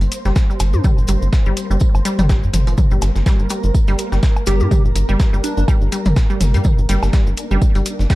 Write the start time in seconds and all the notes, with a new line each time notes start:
Already playing: A#3 C5
0.01 G1, closed hi-hat, cabasa
0.12 closed hi-hat, tambourine, cabasa
0.25 G1 G3, snare, cabasa
0.36 kick, snare, tambourine, cabasa
0.50 G3, cabasa
0.60 G1, snare, closed hi-hat, tambourine, cabasa, high woodblock
0.73 G2, high tom, cabasa
0.84 G3, kick, mid tom, tambourine, cabasa
0.98 G1, cabasa
1.07 G1 G3, closed hi-hat, tambourine, cabasa
1.22 G1, cabasa
1.33 kick, snare, tambourine, cabasa
1.46 G1 G3, cabasa
1.57 closed hi-hat, tambourine, cabasa
1.70 G1 G3, cabasa
1.80 kick, tambourine, cabasa
1.95 G1, cabasa, high woodblock
2.05 G3, closed hi-hat, tambourine, cabasa
2.19 G1 G3, closed hi-hat, mid tom, cabasa
2.29 G3, kick, snare, tambourine, cabasa
2.43 G2, cabasa
2.54 G1, snare, closed hi-hat, mid tom, tambourine, cabasa
2.67 F1 F3, closed hi-hat, cabasa
2.77 A#4, kick, mid tom, tambourine, cabasa
2.91 G1 G3, cabasa
3.02 G1, snare, closed hi-hat, tambourine, cabasa, high woodblock
3.16 G1, snare, cabasa
3.26 G3, kick, snare, tambourine, cabasa
3.39 G1, cabasa
3.50 G3, closed hi-hat, tambourine, cabasa
3.63 G1, cabasa
3.74 kick, tambourine, cabasa
3.87 G1 G3, closed hi-hat, cabasa
3.98 closed hi-hat, tambourine, cabasa
4.12 G1 G3, snare, cabasa
4.23 kick, snare, tambourine, cabasa
4.36 cabasa, high woodblock
4.46 G1 G3 G4, snare, closed hi-hat, tambourine, cabasa
4.60 G2, high tom, cabasa
4.71 G3, kick, mid tom, tambourine, cabasa
4.85 G1, cabasa
4.95 G1, closed hi-hat, tambourine, cabasa
5.09 G1 G3, cabasa
5.20 kick, snare, tambourine, cabasa
5.33 G1 G3, cabasa
5.44 D4, closed hi-hat, tambourine, cabasa
5.57 G1 D4, cabasa
5.68 G3, kick, tambourine, cabasa, high woodblock
5.82 G1, cabasa
5.92 G3, closed hi-hat, tambourine, cabasa
6.05 G1, closed hi-hat, mid tom, cabasa
6.16 kick, snare, tambourine, cabasa
6.30 G3, cabasa
6.41 G1, snare, closed hi-hat, mid tom, tambourine, cabasa
6.54 G2 G3, closed hi-hat, cabasa
6.64 D4, kick, mid tom, tambourine, cabasa
6.78 G1, cabasa
6.89 G1 G3, snare, closed hi-hat, tambourine, cabasa
7.03 G1, snare, cabasa, high woodblock
7.13 G3, kick, snare, tambourine, cabasa
7.27 G1, cabasa
7.37 closed hi-hat, tambourine, cabasa
7.51 G1 G3, cabasa
7.62 kick, tambourine, cabasa
7.75 G1 G3, closed hi-hat, cabasa
7.86 closed hi-hat, tambourine, cabasa
7.99 G1, snare, cabasa
8.10 G3, kick, snare, tambourine, cabasa